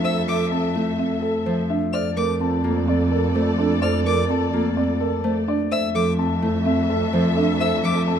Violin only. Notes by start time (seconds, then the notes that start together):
0.04 E6
0.28 D6
1.93 F6
2.17 D6
3.82 F6
4.06 D6
5.72 E6
5.95 D6
7.60 E6
7.84 D6